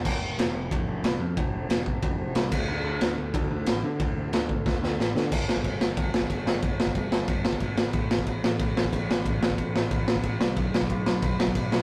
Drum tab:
CC |x---------------|--------------x-|----------------|----------------|
RD |----x---x---x---|x---x---x---x---|----x---x---x---|x---x-----------|
SD |----o-------o---|----o-------o---|----o-------o---|----o---o-o-o-o-|
BD |o-------o-------|o-----o-o-----o-|--------o-------|o-----o-o-------|

CC |x---x---x---x---|x---x---x---x---|x---x---x---x---|x---x---x---x---|
RD |----------------|----------------|----------------|----------------|
SD |--o---o---o---o-|--o---o---o---o-|--o---o---o---o-|--o---o---o---o-|
BD |o--oo---o--oo---|o--oo---o--oo---|o--oo---o--oo---|o--oo---o--oo---|

CC |x---x---x---x---|
RD |----------------|
SD |--o---o---o---o-|
BD |o--oo---o--oo---|